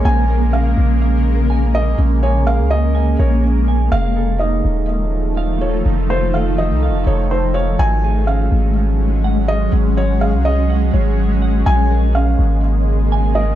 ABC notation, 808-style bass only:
X:1
M:4/4
L:1/16
Q:1/4=124
K:Bbm
V:1 name="808-style bass" clef=bass
B,,,6 B,,,8- B,,,2 | B,,,4- B,,, D,,4- D,, B,,,6 | F,,,6 E,,,8- E,,,2 | F,,,6- F,,, C,,3/2 F,,,3/2 F,,,6 |
A,,,6 A,,,8- A,,,2 | A,,,4- A,,, C,,4- C,, A,,,6 | B,,,6 A,,,8- A,,,2 |]